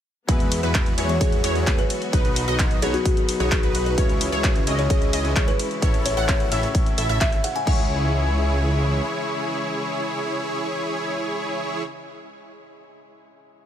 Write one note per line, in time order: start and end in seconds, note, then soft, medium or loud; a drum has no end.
0.27 0.61 E2 loud
0.27 2.11 E3 medium
0.27 0.94 F#3 medium
0.27 0.60 G#3 medium
0.27 2.11 G#3 medium
0.27 0.95 B3 medium
0.27 0.60 B3 medium
0.27 3.94 B3 medium
0.27 0.60 E4 medium
0.27 0.95 E4 medium
0.27 0.60 F#4 medium
0.27 3.94 F#4 medium
0.27 0.96 G#4 loud
0.27 0.60 B4 loud
0.27 kick loud
0.27 closed hi-hat medium
0.27 ride medium
0.40 closed hi-hat soft
0.52 open hi-hat loud
0.52 ride medium
0.63 0.96 E2 medium
0.63 0.95 G#3 medium
0.63 0.95 B3 medium
0.63 0.95 E4 medium
0.63 0.95 F#4 medium
0.63 0.95 B4 loud
0.63 closed hi-hat soft
0.75 kick loud
0.75 clap loud
0.75 closed hi-hat loud
0.75 ride medium
0.86 closed hi-hat soft
0.97 1.19 E2 medium
0.97 1.07 F#3 medium
0.97 1.17 G#3 medium
0.97 1.07 B3 medium
0.97 1.17 B3 medium
0.97 1.17 E4 medium
0.97 1.07 E4 medium
0.97 1.17 F#4 medium
0.97 1.08 G#4 loud
0.97 1.17 C#5 loud
0.97 open hi-hat loud
0.97 ride medium
1.09 1.19 C#5 medium
1.09 closed hi-hat soft
1.21 1.42 E2 medium
1.21 1.41 E4 medium
1.21 1.41 F#4 medium
1.21 1.67 G#4 medium
1.21 1.41 C#5 medium
1.21 kick loud
1.21 closed hi-hat loud
1.21 ride medium
1.32 closed hi-hat soft
1.44 1.65 E2 loud
1.44 1.64 G#3 loud
1.44 1.64 B3 medium
1.44 1.64 E4 medium
1.44 1.64 F#4 medium
1.44 1.64 C#5 loud
1.44 open hi-hat loud
1.44 ride medium
1.54 2.10 F#3 medium
1.54 2.10 B3 medium
1.54 2.11 E4 medium
1.54 2.11 G#4 medium
1.54 closed hi-hat soft
1.67 1.80 E2 loud
1.67 1.82 G#3 medium
1.67 1.82 B3 medium
1.67 1.82 E4 medium
1.67 1.82 B4 medium
1.67 kick loud
1.67 clap loud
1.67 closed hi-hat medium
1.67 ride medium
1.79 1.90 B4 medium
1.79 closed hi-hat soft
1.90 open hi-hat medium
1.90 ride medium
2.02 closed hi-hat soft
2.12 2.45 B1 loud
2.12 2.79 B2 medium
2.12 3.96 D#3 medium
2.12 2.79 F#3 medium
2.12 3.96 F#3 medium
2.12 2.80 B3 medium
2.12 2.45 D#4 loud
2.12 2.80 D#4 medium
2.12 2.45 F#4 medium
2.12 2.45 B4 loud
2.12 2.80 B4 loud
2.12 kick loud
2.12 closed hi-hat medium
2.12 ride medium
2.25 closed hi-hat soft
2.36 open hi-hat loud
2.36 ride medium
2.48 2.80 B1 medium
2.48 2.80 D#4 loud
2.48 2.80 F#4 medium
2.48 2.80 D#5 loud
2.48 closed hi-hat soft
2.59 kick loud
2.59 clap loud
2.59 closed hi-hat loud
2.59 ride medium
2.71 closed hi-hat soft
2.82 2.95 B1 loud
2.82 2.92 B2 medium
2.82 2.92 F#3 medium
2.82 2.92 B3 medium
2.82 2.98 D#4 loud
2.82 2.92 D#4 medium
2.82 2.98 F#4 medium
2.82 2.92 G#4 loud
2.82 2.92 B4 loud
2.82 2.98 C#5 loud
2.82 open hi-hat loud
2.82 ride medium
2.94 3.06 F#4 medium
2.94 closed hi-hat soft
3.05 kick loud
3.05 closed hi-hat loud
3.05 ride medium
3.17 closed hi-hat soft
3.29 open hi-hat loud
3.29 ride medium
3.39 3.61 B1 loud
3.39 3.95 B2 medium
3.39 3.95 F#3 medium
3.39 3.95 B3 medium
3.39 3.60 D#4 medium
3.39 3.95 D#4 medium
3.39 3.60 F#4 medium
3.39 3.84 G#4 medium
3.39 3.96 B4 medium
3.39 3.60 C#5 medium
3.39 closed hi-hat soft
3.52 kick loud
3.52 clap loud
3.52 closed hi-hat medium
3.52 ride medium
3.63 3.96 B1 loud
3.63 3.95 D#4 medium
3.63 3.95 F#4 medium
3.63 3.95 B4 medium
3.63 closed hi-hat soft
3.75 open hi-hat medium
3.75 ride medium
3.86 4.03 B4 medium
3.86 closed hi-hat soft
3.97 4.30 C#2 loud
3.97 4.64 C#3 medium
3.97 7.63 C#3 medium
3.97 7.63 E3 medium
3.97 4.64 G#3 medium
3.97 5.81 G#3 medium
3.97 4.64 C#4 medium
3.97 4.30 E4 medium
3.97 7.63 E4 medium
3.97 4.65 E4 medium
3.97 4.30 G#4 medium
3.97 4.30 C#5 loud
3.97 4.65 C#5 loud
3.97 kick loud
3.97 closed hi-hat medium
3.97 ride medium
4.09 closed hi-hat soft
4.21 open hi-hat loud
4.21 ride medium
4.32 4.65 C#2 medium
4.32 4.64 E4 medium
4.32 4.64 G#4 medium
4.32 4.64 C#5 loud
4.32 closed hi-hat soft
4.44 kick loud
4.44 clap loud
4.44 closed hi-hat loud
4.44 ride medium
4.56 closed hi-hat soft
4.67 4.88 C#2 medium
4.67 4.76 C#3 medium
4.67 4.77 G#3 medium
4.67 4.77 C#4 medium
4.67 4.87 E4 medium
4.67 4.77 E4 medium
4.67 4.87 G#4 medium
4.67 4.77 C#5 loud
4.67 4.87 D#5 loud
4.67 open hi-hat loud
4.67 ride medium
4.79 4.88 C#5 medium
4.79 closed hi-hat soft
4.90 5.11 C#2 loud
4.90 5.10 E4 medium
4.90 5.10 G#4 medium
4.90 5.36 G#4 medium
4.90 5.10 D#5 loud
4.90 kick loud
4.90 closed hi-hat medium
4.90 ride medium
5.02 closed hi-hat soft
5.13 5.34 C#2 loud
5.13 5.33 E4 loud
5.13 5.33 G#4 medium
5.13 5.33 D#5 loud
5.13 open hi-hat loud
5.13 ride medium
5.24 5.79 C#3 medium
5.24 5.79 G#3 medium
5.24 5.80 C#4 medium
5.24 5.80 E4 medium
5.24 5.80 C#5 medium
5.24 closed hi-hat soft
5.36 5.49 C#2 loud
5.36 5.52 E4 medium
5.36 5.52 G#4 medium
5.36 5.52 C#5 medium
5.36 kick loud
5.36 clap loud
5.36 closed hi-hat medium
5.36 ride medium
5.48 5.59 B4 medium
5.48 closed hi-hat soft
5.59 open hi-hat loud
5.59 ride medium
5.71 closed hi-hat soft
5.81 6.15 A1 loud
5.81 6.48 A2 medium
5.81 6.49 A3 medium
5.81 7.65 A3 medium
5.81 6.49 C#4 medium
5.81 6.14 E4 loud
5.81 6.49 E4 medium
5.81 6.14 A4 medium
5.81 6.14 C#5 loud
5.81 6.50 C#5 loud
5.81 kick loud
5.81 closed hi-hat medium
5.81 ride medium
5.94 closed hi-hat soft
6.06 6.13 C#5 medium
6.06 open hi-hat loud
6.06 ride medium
6.17 6.49 A1 medium
6.17 6.49 E4 loud
6.17 6.49 A4 loud
6.17 6.25 C#5 medium
6.17 6.49 F#5 loud
6.17 closed hi-hat soft
6.29 kick loud
6.29 clap loud
6.29 closed hi-hat medium
6.29 ride medium
6.40 closed hi-hat soft
6.51 6.65 A1 loud
6.51 6.61 A2 medium
6.51 6.61 A3 medium
6.51 6.61 C#4 medium
6.51 6.67 E4 medium
6.51 6.61 E4 medium
6.51 6.67 A4 medium
6.51 6.62 C#5 loud
6.51 6.67 E5 loud
6.51 open hi-hat loud
6.51 ride medium
6.63 closed hi-hat soft
6.75 kick loud
6.75 closed hi-hat medium
6.75 ride medium
6.86 closed hi-hat soft
6.98 7.07 A1 loud
6.98 7.08 E4 medium
6.98 7.08 A4 medium
6.98 7.08 E5 loud
6.98 open hi-hat loud
6.98 ride medium
7.09 7.19 A1 loud
7.09 7.18 E4 loud
7.09 7.18 A4 medium
7.09 7.18 E5 loud
7.09 closed hi-hat soft
7.21 7.34 A1 loud
7.21 7.36 E5 loud
7.21 7.33 E5 medium
7.21 kick loud
7.21 clap loud
7.21 closed hi-hat medium
7.21 ride medium
7.32 closed hi-hat soft
7.44 7.53 F#5 loud
7.44 open hi-hat loud
7.44 ride medium
7.56 7.67 G#5 medium
7.56 closed hi-hat soft
7.65 9.01 C#2 loud
7.65 11.83 C#3 medium
7.65 11.83 E3 medium
7.65 11.81 G#3 medium
7.65 11.83 G#3 medium
7.65 11.82 C#4 medium
7.65 11.83 E4 medium
7.65 11.84 E4 medium
7.65 11.83 G#4 medium
7.65 11.83 C#5 loud
7.65 11.85 C#5 loud
7.65 kick loud
7.65 crash medium